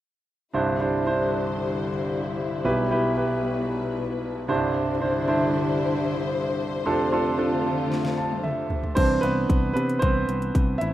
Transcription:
0.53 C2 G2 D3 G3 D4 E4 C5
0.80 D4 E4 C5
1.06 D4 E4 C5
2.64 B1 B2 E4 G4 B4
2.91 E4 G4 B4
3.17 E4 G4 B4
4.48 C2 G2 D3 G3 D4 E4 C5
5.01 D4 E4 C5
5.28 D4 E4 C5
6.86 F2 C3 D3 A3 D4 F4 A4
7.12 D4 F4 A4
7.38 D4 F4 A4
7.92 snare
8.05 snare
8.18 A5
8.31 high tom
8.43 E5, mid tom
8.70 floor tom
8.84 floor tom
8.95 C2 E3 C4 D4 C5, kick, closed hi-hat, crash
9.21 C2 B3 B4, closed hi-hat
9.50 C2, kick, closed hi-hat
9.73 C3 B3 B4, closed hi-hat
9.89 closed hi-hat
9.99 C2 C4 C5, kick, closed hi-hat
10.29 C2, closed hi-hat
10.42 closed hi-hat
10.55 C2, kick, closed hi-hat
10.78 A1 E4 E5, closed hi-hat

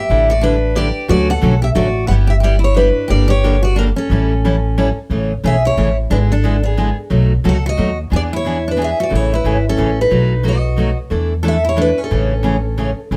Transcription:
Already playing: G4 E5
0.10 A1 D3 G3 D4 E4 A4
0.30 F#4 D5
0.41 D3 G3 D4 E4 A4 B4
0.75 D3 G3 D4 E4 G4 A4 D5
1.08 D2 D3 F#3 A3 C#4 F#4 D5
1.30 A4 F#5
1.41 B1 D3 F#3 A3 C#4 F#4
1.62 G4 E5
1.75 A1 D3 F#3 A3 C#4 F#4 D5
2.07 G1 G3 B3 E4 G4 B4 F#5
2.27 G4 E5
2.40 G3 B3 E4 G4 D5
2.44 G4
2.59 E4
2.64 C#5
2.75 G3 B3 D4 E4 G4 B4
3.08 G1 D3 G3 A#3 D4 G4 D5
3.28 G4 C#5
3.44 D3 G3 A#3 D4 G4
3.63 F#4 D5
3.76 D3 G3 A#3 D4 G4 A#4
3.96 C#4 A4
4.10 A1 E3 G3 C#4 E4 A4
4.45 E3 G3 C#4 E4 A4
4.78 E3 G3 C#4 E4 A4
5.10 A1 C#3 E3 A3 C#4 G#4
5.44 B1 C#3 E3 A3 C#4 G#4 E5
5.65 E4 C#5
5.77 A1 C#3 E3 A3 C#4 G#4
6.10 G#1 D3 G#3 B3 D4 E4 G#4 B4
6.32 D4 A4
6.44 D3 G#3 B3 E4 G#4
6.63 B3 G#4
6.77 D3 G#3 B3 E4 G#4
7.10 B1 B2 F#3 A3 D#4 F#4
7.44 C#2 B2 F#3 A3 D#4 F#4 A4
7.49 F#5
7.66 F#4 D#5
7.77 D#2 B2 F#3 A3 D#4 F#4
8.10 E2 E3 B3 D4 G#4
8.16 D5
8.33 E4 C#5
8.45 E3 B3 D4 G#4
8.68 D4 B4
8.77 E3 B3 D4 G#4
8.82 G#4 E5
9.00 F#4 D5
9.10 A1 C#3 E3 A3 C#4 G#4
9.15 E4 C#5
9.34 E4 B4
9.44 G#1 C#3 E3 A3 C#4 G#4
9.69 C#4 A4
9.77 A1 C#3 E3 A3 C#4 G#4
10.01 D#4 B4
10.11 B1 B2 F#3 A3 D#4 F#4
10.43 B2 F#3 A3 D#4 F#4
10.48 F#4 D#5
10.76 B2 F#3 A3 D#4 F#4
11.10 E2 E3 A3 D4 E4 A4
11.43 E3 A3 D4 E4 A4
11.48 E5
11.65 E4
11.69 C#5
11.76 E3 A3 D4 E4 A4
11.82 B4
11.98 C#4
12.04 A4
12.11 A1 C#3 E3 A3 C#4 G#4
12.43 C#3 E3 A3 C#4 G#4
12.77 C#3 E3 A3 C#4 G#4
13.11 A1 C#3 E3 A3 C#4 G#4

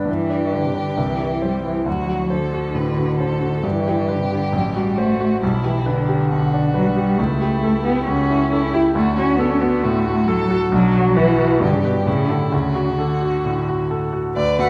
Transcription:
Already playing: D4
0.06 G2 E3 G4
0.29 D4
0.53 D3 B4
0.64 C3
0.74 D3 D4
0.97 C2 E3
1.20 E4
1.42 G3 C5
1.64 E3 E4
1.86 D2 F#3 F#4
2.08 F#4
2.30 D3 A4 C5
2.54 F#4
2.74 A2 B4
2.97 F#4
3.18 A4 C5
3.42 F#4
3.63 G2 E3 G4
3.87 G4
4.08 D3 B4
4.20 C3
4.31 D3 G4
4.53 A1 F#3
4.75 G3 F#4
4.97 A3 F#4 C5
5.20 F#4
5.42 B1 G3 E4
5.64 E3 G4
5.86 D3 D4 B4
6.09 G4
6.31 B1 F#4
6.54 D4
6.74 F#3 B4
6.85 G3
6.94 G3 G4
7.17 C#2 A3 E4
7.41 G4
7.64 A4
7.84 B3 G4
8.05 C#2 C#4 F#4
8.30 E4
8.51 E4 A4
8.73 E4 G4
8.94 D2 A3 F#4
9.17 C#4 F#4
9.39 B3 D4 A4
9.50 C#4
9.60 B3 F#4
9.83 A2 A3 F#4
10.06 F#4
10.27 F#3 A4
10.50 F#4
10.71 B1 F#3 D4
10.95 F#4
11.16 E3 F#4 B4
11.39 F#4
11.60 G2 D3 G4
11.73 C#3
11.83 B2 G4 B4
12.04 A2 C#3 E4
12.27 D3 G4 A4
12.50 D2 C#3 F#4
12.75 F#4
12.98 D3 A4
13.21 F#4
13.45 A2
13.69 F#4
13.91 A4
14.13 F#4
14.36 D2 B4 D5
14.59 A3 F#4 A4 F#5

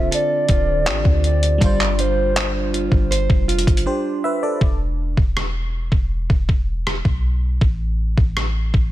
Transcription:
Already playing: D3 C4 D4 F4 A4 C5
0.11 A4 D5, closed hi-hat
0.49 D1 F4, kick, closed hi-hat
0.86 A1 D3 C4 D4 F4 G4, clap, closed hi-hat
1.05 D2, kick
1.24 D5, closed hi-hat
1.43 closed hi-hat
1.58 G1 G3 D4, kick, closed hi-hat
1.63 F4 C5 D5
1.81 clap
1.99 D4 F4 C5, closed hi-hat
2.36 D4, clap, closed hi-hat
2.73 F4, closed hi-hat
2.92 G1, kick
3.11 C5, closed hi-hat
3.30 F1, kick
3.48 F4, closed hi-hat
3.59 closed hi-hat
3.67 G1, kick, closed hi-hat
3.77 closed hi-hat
3.86 D4 G4 C5
4.24 B4 E5
4.43 A4 D5
4.61 E1, kick
5.17 E1, kick
5.37 cross-stick
5.92 E1, kick
6.30 E1, kick
6.49 kick
6.87 cross-stick
7.05 B1, kick
7.61 A1, kick
8.18 A1, kick
8.37 cross-stick
8.74 A1, kick

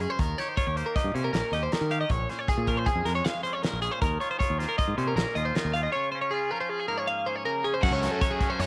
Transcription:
Already playing: F#2 C#3 F#3 G#3 G#4
0.00 C#4 G#4, closed hi-hat
0.10 C5
0.19 D#2 D#3 A#4, kick, closed hi-hat
0.38 G4 C#5, snare, closed hi-hat
0.49 C5
0.57 F4 C#5, kick, closed hi-hat
0.67 D#2 G4
0.76 A#3 G4 C5, closed hi-hat
0.86 A#4
0.96 G4 D#5, kick, snare, closed hi-hat
1.04 G2
1.14 A#2 C3 C#4 C5, closed hi-hat
1.24 A#4
1.33 A#1 A#4, snare, closed hi-hat
1.52 D#2 G4 D#5, snare, closed hi-hat
1.63 C5
1.72 D#3 A#4, snare, closed hi-hat
1.81 D#3
1.91 G4 F5, closed hi-hat
2.01 D#5
2.09 A#1 A#2 C#5, kick, closed hi-hat
2.29 C#4 C5, snare, closed hi-hat
2.39 C#5
2.48 G#4, kick, closed hi-hat
2.58 A#2
2.66 F3 C#4 A#4, kick, closed hi-hat
2.77 C5
2.86 G#4, kick, closed hi-hat
2.96 F2
3.05 F2 G#3 A#4, snare, closed hi-hat
3.15 C#5
3.25 F5, snare, closed hi-hat
3.43 C#4 C5, closed hi-hat
3.53 C#5
3.63 A#2 A#4, snare, closed hi-hat
3.73 A#1
3.82 C#4 G#4, closed hi-hat
3.91 C5
4.02 D#2 D#3 A#4, kick, closed hi-hat
4.20 F4 C#5, closed hi-hat
4.31 C5
4.39 F4 C#5, kick, closed hi-hat
4.50 D#2
4.58 A#3 F4 C5, snare, closed hi-hat
4.69 A#4
4.78 F4 D#5, kick, closed hi-hat
4.88 G#2
4.97 A#2 C3 C#4 C5, closed hi-hat
5.07 A#4
5.16 A#1 A#4, snare, closed hi-hat
5.35 D#2 F4 D#5, closed hi-hat
5.45 C5
5.55 D#3 A#4, snare, closed hi-hat
5.65 D#2
5.74 F4 F5, closed hi-hat
5.83 D#5
5.92 C#3 C#5
6.12 C#4 C5
6.21 C#5
6.31 F4 G#4
6.51 F3 C#4 A#4
6.61 C5
6.69 F4 G#4
6.80 G#4
6.88 G#2 A#3 A#4
6.98 C#5
7.07 F5
7.26 C#4 C5
7.36 C#5
7.46 C#3 A#4
7.64 C#4 G#4
7.74 C5
7.82 F#2 F#3 A3 C#4 F#4 F#5, kick, crash
7.91 C#2 C#5
8.02 F#3 A3 C#4 F#4, snare, closed hi-hat
8.12 A4
8.20 F#3 A3 C#4 F#4 C#5, kick, closed hi-hat
8.31 G#4
8.39 A3 C#4 F#4, kick, closed hi-hat
8.43 C#4
8.50 C5
8.59 F#2 C#3 C#5, snare, closed hi-hat

